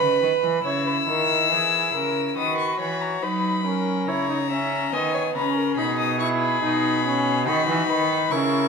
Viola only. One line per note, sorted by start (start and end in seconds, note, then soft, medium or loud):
0.00 0.63 B4 medium
0.65 2.33 E4 medium
2.37 3.24 F#4 medium
3.22 3.64 D#4 medium
3.65 4.09 C#4 medium
4.08 4.28 E4 medium
4.29 4.37 D#4 medium
4.50 4.94 C#4 medium
4.93 5.37 B3 medium
5.35 5.79 C#4 medium
5.78 6.19 D#4 medium
6.20 6.61 E4 medium
6.63 7.04 D#4 medium
7.05 7.46 C#4 medium
7.47 8.33 D#4 medium
8.32 8.68 E4 medium